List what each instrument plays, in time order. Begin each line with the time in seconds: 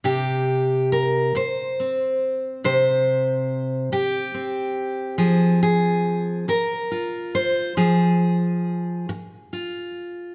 0.04 steel-string acoustic guitar C3 G4
0.92 steel-string acoustic guitar A#4
1.35 steel-string acoustic guitar C5, muted steel-string acoustic guitar stroke
1.80 steel-string acoustic guitar C4
2.64 steel-string acoustic guitar C3 C5
3.92 steel-string acoustic guitar G4, muted steel-string acoustic guitar stroke
4.34 steel-string acoustic guitar C4
5.18 steel-string acoustic guitar F3 G#4
5.63 steel-string acoustic guitar G#4
6.48 steel-string acoustic guitar A#4, muted steel-string acoustic guitar stroke
6.91 steel-string acoustic guitar F4
7.35 steel-string acoustic guitar C5
7.77 steel-string acoustic guitar F3 G#4
9.09 muted steel-string acoustic guitar stroke
9.53 steel-string acoustic guitar F4